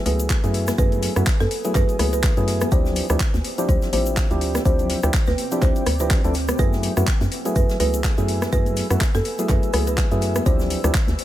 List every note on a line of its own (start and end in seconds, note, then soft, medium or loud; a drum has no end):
0.00 2.68 B4 medium
0.00 2.68 G#5 medium
0.00 0.76 E6 medium
0.06 0.35 C#2 medium
0.06 0.40 F#3 medium
0.06 0.40 A3 medium
0.06 0.40 B3 medium
0.06 0.41 E4 medium
0.06 0.41 G#4 medium
0.06 0.37 B4 loud
0.06 open hi-hat loud
0.06 high conga medium
0.06 shaker medium
0.20 closed hi-hat medium
0.20 shaker medium
0.30 kick loud
0.30 snare loud
0.30 clap loud
0.30 closed hi-hat medium
0.30 shaker medium
0.43 0.72 F#2 medium
0.43 0.76 F#3 loud
0.43 0.76 A3 medium
0.43 0.76 B3 medium
0.43 0.76 E4 medium
0.43 0.76 G#4 loud
0.43 closed hi-hat soft
0.43 shaker soft
0.54 open hi-hat medium
0.54 shaker medium
0.67 cross-stick medium
0.67 snare medium
0.67 closed hi-hat medium
0.67 high conga medium
0.67 shaker medium
0.78 1.08 F#2 loud
0.78 1.13 F#3 medium
0.78 1.13 A3 medium
0.78 1.13 B3 medium
0.78 1.13 E4 medium
0.78 1.13 G#4 loud
0.78 1.10 B4 loud
0.78 2.70 D#6 medium
0.78 kick loud
0.78 closed hi-hat medium
0.78 shaker medium
0.92 closed hi-hat soft
0.92 low conga medium
0.92 shaker soft
1.02 snare soft
1.02 open hi-hat loud
1.02 shaker medium
1.16 1.23 F#2 medium
1.16 1.26 F#3 medium
1.16 1.26 A3 medium
1.16 1.26 B3 medium
1.16 1.26 E4 medium
1.16 1.26 F#4 loud
1.16 cross-stick medium
1.16 closed hi-hat medium
1.16 shaker medium
1.26 kick loud
1.26 snare loud
1.26 clap loud
1.26 closed hi-hat medium
1.26 shaker medium
1.26 shaker loud
1.40 1.47 F#2 loud
1.40 1.70 A4 loud
1.40 snare soft
1.40 closed hi-hat soft
1.40 high conga medium
1.40 shaker soft
1.51 open hi-hat loud
1.51 shaker medium
1.64 1.97 F#3 loud
1.64 1.97 A3 medium
1.64 1.97 B3 medium
1.64 1.97 E4 medium
1.64 1.97 G#4 loud
1.64 closed hi-hat medium
1.64 shaker medium
1.75 1.84 F#2 loud
1.75 2.06 B4 loud
1.75 kick loud
1.75 clap soft
1.75 closed hi-hat medium
1.75 shaker medium
1.89 closed hi-hat soft
1.89 shaker soft
1.99 2.29 C#2 medium
1.99 2.34 F#3 medium
1.99 2.34 A3 medium
1.99 2.34 B3 medium
1.99 2.34 E4 medium
1.99 2.34 G#4 medium
1.99 cross-stick medium
1.99 open hi-hat loud
1.99 high conga medium
1.99 shaker medium
2.13 2.43 B4 medium
2.13 closed hi-hat medium
2.13 shaker medium
2.23 kick loud
2.23 snare loud
2.23 clap loud
2.23 closed hi-hat medium
2.23 shaker medium
2.37 2.65 F#2 medium
2.37 2.69 F#3 loud
2.37 2.69 A3 medium
2.37 2.69 B3 medium
2.37 2.70 E4 medium
2.37 2.70 G#4 loud
2.37 closed hi-hat soft
2.37 shaker soft
2.48 snare medium
2.48 open hi-hat loud
2.48 shaker medium
2.61 cross-stick medium
2.61 closed hi-hat medium
2.61 high conga loud
2.61 shaker medium
2.71 3.01 D2 loud
2.71 3.06 F3 medium
2.71 3.06 C4 medium
2.71 6.55 C4 medium
2.71 3.07 D4 medium
2.71 3.07 E4 medium
2.71 3.07 G4 loud
2.71 2.93 C5 loud
2.71 6.55 G5 medium
2.71 4.64 E6 loud
2.71 kick loud
2.71 closed hi-hat medium
2.71 shaker medium
2.85 snare soft
2.85 low conga medium
2.85 shaker soft
2.96 open hi-hat loud
2.96 shaker medium
3.10 3.16 D2 medium
3.10 3.20 F3 medium
3.10 3.20 C4 medium
3.10 3.20 D4 medium
3.10 3.20 E4 medium
3.10 3.20 G4 loud
3.10 cross-stick medium
3.10 closed hi-hat medium
3.10 shaker medium
3.20 kick loud
3.20 snare loud
3.20 clap loud
3.20 closed hi-hat medium
3.20 shaker medium
3.20 shaker loud
3.34 3.40 D2 loud
3.34 snare soft
3.34 closed hi-hat soft
3.34 high conga loud
3.34 shaker soft
3.44 open hi-hat loud
3.44 shaker medium
3.58 3.90 F3 loud
3.58 3.90 C4 medium
3.58 3.90 D4 medium
3.58 3.90 E4 medium
3.58 3.91 G4 loud
3.58 closed hi-hat medium
3.58 shaker medium
3.69 3.77 D2 loud
3.69 3.89 C5 medium
3.69 kick loud
3.69 closed hi-hat medium
3.69 low conga medium
3.69 shaker medium
3.82 snare soft
3.82 closed hi-hat soft
3.82 shaker soft
3.92 4.22 A1 medium
3.92 4.27 F3 medium
3.92 4.27 C4 medium
3.92 4.28 D4 medium
3.92 4.28 E4 medium
3.92 4.28 G4 medium
3.92 4.24 C5 loud
3.92 open hi-hat loud
3.92 high conga medium
3.92 shaker medium
4.06 closed hi-hat medium
4.06 shaker medium
4.17 kick loud
4.17 snare loud
4.17 clap loud
4.17 closed hi-hat medium
4.17 shaker medium
4.30 4.59 D2 medium
4.30 4.63 F3 loud
4.30 4.63 C4 medium
4.30 4.63 D4 medium
4.30 4.63 E4 medium
4.30 4.63 G4 loud
4.30 closed hi-hat soft
4.30 shaker soft
4.41 open hi-hat loud
4.41 shaker medium
4.55 cross-stick medium
4.55 snare soft
4.55 closed hi-hat medium
4.55 high conga medium
4.55 shaker medium
4.65 4.95 D2 loud
4.65 5.00 F3 medium
4.65 5.00 C4 medium
4.65 5.00 D4 medium
4.65 5.00 E4 medium
4.65 5.00 G4 loud
4.65 4.97 C5 medium
4.65 6.57 D6 medium
4.65 kick loud
4.65 closed hi-hat medium
4.65 shaker medium
4.79 closed hi-hat soft
4.79 low conga medium
4.79 shaker soft
4.89 snare medium
4.89 open hi-hat loud
4.89 shaker medium
5.03 5.10 D2 medium
5.03 5.13 F3 medium
5.03 5.13 C4 medium
5.03 5.13 D4 medium
5.03 5.13 E4 medium
5.03 5.14 G4 loud
5.03 cross-stick medium
5.03 closed hi-hat soft
5.03 shaker medium
5.14 kick loud
5.14 snare loud
5.14 clap loud
5.14 closed hi-hat medium
5.14 shaker medium
5.14 shaker loud
5.26 5.34 D2 loud
5.26 5.57 B4 medium
5.26 snare soft
5.26 closed hi-hat soft
5.26 high conga loud
5.26 shaker soft
5.38 open hi-hat loud
5.38 shaker medium
5.51 5.84 F3 medium
5.51 5.84 C4 medium
5.51 5.84 D4 medium
5.51 5.84 E4 medium
5.51 5.84 G4 loud
5.51 closed hi-hat medium
5.51 shaker medium
5.62 5.71 D2 medium
5.62 5.94 C5 loud
5.62 kick loud
5.62 clap soft
5.62 closed hi-hat medium
5.62 shaker medium
5.76 closed hi-hat soft
5.76 shaker soft
5.86 6.16 D2 medium
5.86 cross-stick medium
5.86 open hi-hat loud
5.86 high conga medium
5.86 shaker medium
6.00 6.21 F3 medium
6.00 6.21 C4 medium
6.00 6.21 D4 medium
6.00 6.21 E4 medium
6.00 6.21 G4 medium
6.00 6.30 B4 medium
6.00 closed hi-hat soft
6.00 shaker medium
6.10 kick loud
6.10 snare loud
6.10 clap loud
6.10 closed hi-hat medium
6.10 shaker medium
6.24 6.53 D2 medium
6.24 6.34 F3 medium
6.24 6.34 C4 medium
6.24 6.34 D4 medium
6.24 6.34 E4 medium
6.24 6.35 A4 medium
6.24 closed hi-hat soft
6.24 shaker soft
6.34 snare soft
6.34 open hi-hat medium
6.34 shaker medium
6.48 cross-stick medium
6.48 closed hi-hat medium
6.48 high conga medium
6.48 shaker medium
6.58 6.88 F#2 loud
6.58 6.94 F#3 medium
6.58 6.94 A3 medium
6.58 6.94 B3 medium
6.58 6.94 E4 medium
6.58 6.94 G#4 loud
6.58 10.42 B4 medium
6.58 6.80 B4 loud
6.58 10.42 G#5 medium
6.58 11.24 E6 medium
6.58 kick loud
6.58 closed hi-hat medium
6.58 shaker medium
6.73 snare soft
6.73 low conga medium
6.73 shaker soft
6.83 open hi-hat loud
6.83 shaker medium
6.97 7.03 F#2 medium
6.97 7.07 F#3 medium
6.97 7.07 A3 medium
6.97 7.07 B3 medium
6.97 7.07 E4 medium
6.97 7.07 F#4 loud
6.97 cross-stick medium
6.97 closed hi-hat soft
6.97 shaker medium
7.07 kick loud
7.07 snare loud
7.07 clap loud
7.07 closed hi-hat medium
7.07 shaker medium
7.21 7.28 F#2 loud
7.21 snare soft
7.21 closed hi-hat soft
7.21 high conga medium
7.21 shaker soft
7.32 open hi-hat loud
7.32 shaker medium
7.45 7.77 F#3 medium
7.45 7.77 A3 medium
7.45 7.78 B3 medium
7.45 7.78 E4 medium
7.45 7.78 G#4 loud
7.45 closed hi-hat medium
7.45 shaker medium
7.56 7.64 F#2 medium
7.56 7.77 B4 medium
7.56 kick loud
7.56 closed hi-hat medium
7.56 low conga medium
7.56 shaker loud
7.56 shaker medium
7.69 snare medium
7.69 closed hi-hat soft
7.69 shaker soft
7.80 8.09 C#2 medium
7.80 8.14 F#3 medium
7.80 8.15 A3 medium
7.80 8.15 B3 medium
7.80 8.15 E4 medium
7.80 8.15 G#4 medium
7.80 8.11 B4 loud
7.80 open hi-hat loud
7.80 high conga medium
7.80 shaker medium
7.94 closed hi-hat medium
7.94 shaker medium
8.04 kick loud
8.04 snare loud
8.04 clap loud
8.04 closed hi-hat medium
8.04 shaker medium
8.18 8.46 F#2 medium
8.18 8.50 F#3 loud
8.18 8.50 A3 medium
8.18 8.50 B3 medium
8.18 8.50 E4 medium
8.18 8.50 G#4 loud
8.18 closed hi-hat soft
8.18 shaker soft
8.28 open hi-hat loud
8.28 shaker medium
8.42 cross-stick medium
8.42 snare medium
8.42 closed hi-hat soft
8.42 high conga loud
8.42 shaker medium
8.52 8.82 F#2 loud
8.52 8.87 F#3 loud
8.52 8.87 A3 medium
8.52 8.87 B3 medium
8.52 8.87 E4 medium
8.52 8.87 G#4 loud
8.52 8.84 B4 loud
8.52 kick loud
8.52 closed hi-hat medium
8.52 shaker medium
8.66 closed hi-hat soft
8.66 low conga medium
8.66 shaker soft
8.76 snare soft
8.76 open hi-hat loud
8.76 shaker medium
8.90 8.97 F#2 medium
8.90 9.00 F#3 medium
8.90 9.00 A3 medium
8.90 9.00 B3 medium
8.90 9.01 E4 medium
8.90 9.01 F#4 loud
8.90 cross-stick medium
8.90 closed hi-hat medium
8.90 shaker medium
9.01 kick loud
9.01 snare loud
9.01 clap loud
9.01 closed hi-hat medium
9.01 shaker medium
9.14 9.21 F#2 loud
9.14 9.44 A4 loud
9.14 snare soft
9.14 closed hi-hat soft
9.14 high conga medium
9.14 shaker soft
9.24 open hi-hat medium
9.24 shaker medium
9.39 9.71 F#3 loud
9.39 9.71 A3 medium
9.39 9.71 B3 medium
9.39 9.71 E4 medium
9.39 9.71 G#4 loud
9.39 closed hi-hat medium
9.39 shaker medium
9.49 9.58 F#2 medium
9.49 9.81 B4 loud
9.49 kick loud
9.49 clap soft
9.49 closed hi-hat medium
9.49 shaker medium
9.63 closed hi-hat soft
9.63 shaker soft
9.73 10.03 C#2 medium
9.73 10.08 F#3 medium
9.73 10.08 A3 medium
9.73 10.08 B3 medium
9.73 10.08 E4 medium
9.73 10.08 G#4 medium
9.73 cross-stick medium
9.73 open hi-hat loud
9.73 high conga medium
9.73 shaker medium
9.87 10.17 B4 medium
9.87 closed hi-hat medium
9.87 shaker medium
9.97 kick loud
9.97 snare loud
9.97 clap loud
9.97 closed hi-hat medium
9.97 shaker medium
10.11 10.40 F#2 medium
10.11 10.43 F#3 loud
10.11 10.44 A3 medium
10.11 10.44 B3 medium
10.11 10.44 E4 medium
10.11 10.44 G#4 loud
10.11 closed hi-hat soft
10.11 shaker soft
10.22 snare soft
10.22 open hi-hat medium
10.22 shaker medium
10.35 cross-stick medium
10.35 closed hi-hat medium
10.35 high conga medium
10.35 shaker medium
10.46 10.76 D2 loud
10.46 10.81 F3 loud
10.46 10.81 C4 medium
10.46 11.24 C4 medium
10.46 10.81 D4 medium
10.46 10.81 E4 medium
10.46 10.81 G4 loud
10.46 10.67 C5 loud
10.46 11.24 G5 medium
10.46 kick loud
10.46 closed hi-hat medium
10.46 shaker medium
10.59 snare soft
10.59 low conga medium
10.59 shaker soft
10.70 open hi-hat loud
10.70 shaker medium
10.84 10.90 D2 medium
10.84 10.94 F3 medium
10.84 10.94 C4 medium
10.84 10.94 D4 medium
10.84 10.94 E4 medium
10.84 10.94 G4 loud
10.84 cross-stick medium
10.84 closed hi-hat medium
10.84 shaker medium
10.94 kick loud
10.94 snare loud
10.94 clap loud
10.94 closed hi-hat medium
10.94 shaker loud
10.94 shaker medium
11.07 11.15 D2 loud
11.07 snare soft
11.07 closed hi-hat soft
11.07 high conga medium
11.07 shaker soft
11.19 open hi-hat medium
11.19 shaker medium